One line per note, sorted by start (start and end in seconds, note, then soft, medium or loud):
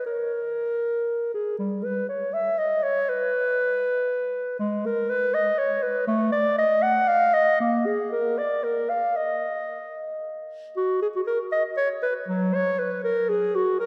0.06 1.31 A#4 medium
1.34 1.58 G#4 medium
1.59 1.86 G3 medium
1.85 2.08 B4 medium
2.09 2.35 C#5 medium
2.34 2.60 E5 medium
2.58 2.84 D#5 medium
2.83 3.11 C#5 medium
3.09 4.59 B4 medium
4.59 4.87 G#3 medium
4.86 5.11 A#4 medium
5.09 5.36 B4 medium
5.34 5.60 D#5 medium
5.58 5.84 C#5 medium
5.83 6.07 B4 medium
6.08 6.32 A3 medium
6.32 6.57 D5 medium
6.58 6.84 D#5 medium
6.82 7.09 F#5 medium
7.08 7.35 F5 medium
7.34 7.60 D#5 medium
7.60 7.88 A#3 medium
7.86 8.11 G#4 medium
8.12 8.40 A#4 medium
8.38 8.65 D5 medium
8.64 8.91 A#4 medium
8.89 9.18 F5 medium
9.16 10.23 D#5 medium
10.77 11.00 F#4 medium
11.02 11.08 G#4 medium
11.16 11.21 F#4 medium
11.27 11.38 A#4 medium
11.52 11.63 D#5 medium
11.77 11.88 C#5 medium
12.03 12.14 B4 medium
12.28 12.56 F#3 medium
12.54 12.80 C#5 medium
12.79 13.03 B4 medium
13.04 13.31 A#4 medium
13.29 13.57 G#4 medium
13.55 13.79 F#4 medium
13.80 13.86 A#4 medium